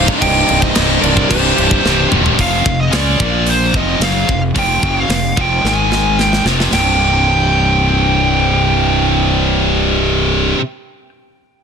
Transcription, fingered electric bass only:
0.22 C1
0.50 C1
0.77 C1
1.03 C1
1.31 C1
1.59 C1
1.85 C1
2.14 D#1
2.39 F1
2.65 F1
2.93 C#2
3.20 A#1
3.74 F1
4.00 F#1
4.29 F1
4.56 F1
4.83 F#1
5.09 F1
5.37 F1
5.64 G#1
6.45 F1
6.72 C1

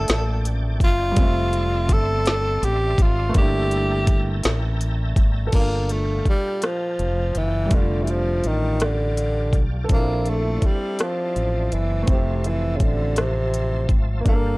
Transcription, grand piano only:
Already playing: F3 A3 A#3 D4 E5
1.11 G3 G#3
1.19 A3 C4 E5
3.29 A3 A#3
3.37 D4
3.41 E4
5.47 A4
5.51 A#2 D4
5.59 F5
7.65 G3
7.70 A3 D4
7.77 F4
9.84 C4 A4
9.92 D4 E4
12.02 A3 C4
12.10 E4
12.14 G4
14.21 A#3
14.25 D4 F5
14.32 A4

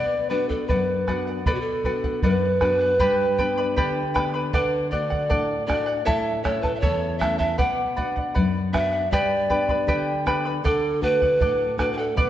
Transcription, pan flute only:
Already playing: D5
0.30 B4
0.49 A4
0.67 B4
1.47 A4
1.54 F#4
1.61 A4
2.23 B4
4.54 B4
4.91 D5
5.67 D5
6.06 E5
6.44 C#5
6.62 B4
6.75 E5
6.80 C#5
7.19 E5
7.38 E5
7.59 F#5
8.73 E5
9.12 D5
10.66 A4
11.03 B4
11.78 B4
11.93 B4
11.98 A4
12.18 B4

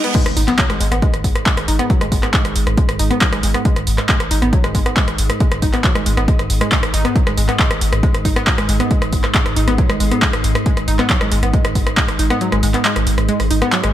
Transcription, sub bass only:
0.26 G#1
0.37 G#1
0.70 G#1
0.80 G#1
0.92 G#1
1.14 G#1
1.24 G#1
1.57 G#1
1.68 G#1
2.01 G#1
2.12 G#1
2.45 G#1
2.56 G#1
2.67 G#1
2.89 G#1
3.00 G#1
3.33 G#1
3.43 G#1
3.76 G#1
3.87 G#1
4.20 G#1
4.31 G#1
4.42 G#1
4.64 G#1
4.75 G#1
5.08 G#1
5.19 G#1
5.52 G#1
5.62 G#1
5.95 G#1
6.06 G#1
6.17 G#1
6.39 G#1
6.50 G#1
6.83 G#1
6.94 G#1
7.27 G#1
7.37 G#1
7.71 G#1
7.81 G#1
7.92 G#1
8.14 G#1
8.25 G#1
8.58 G#1
8.69 G#1
9.02 G#1
9.13 G#1
9.46 G#1
9.56 G#1
9.68 G#1
9.90 G#1
10.00 G#1
10.33 G#1
10.44 G#1
10.77 G#1
10.88 G#1
11.21 G#1
11.32 G#1
11.43 G#1
11.65 G#1
11.75 G#1
12.08 G#1
12.19 G#1
12.52 G#1
12.63 G#1
12.96 G#1
13.07 G#1
13.18 G#1
13.40 G#1
13.51 G#1
13.84 G#1

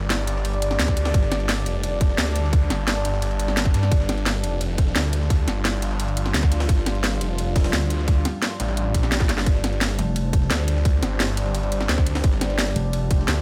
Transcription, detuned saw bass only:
Already playing: G1
0.79 D2
1.14 G1
1.66 F1
2.18 D2
2.70 G1
3.05 G1
3.22 G1
3.74 G2
3.92 G1
4.44 F1
4.96 D2
5.48 G1
6.34 D2
6.69 G1
7.21 F1
7.73 D2
8.60 A1
8.94 A#1
9.29 G1
9.46 G1
10.50 D2
11.03 G1
11.89 D2
12.24 G1
13.28 D2

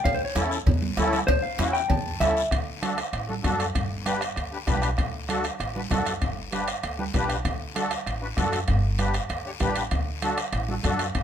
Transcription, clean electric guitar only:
0.04 F5
0.14 C5
0.25 C#5
1.27 C5
1.43 F5
1.73 G5
1.89 A5
2.20 E5

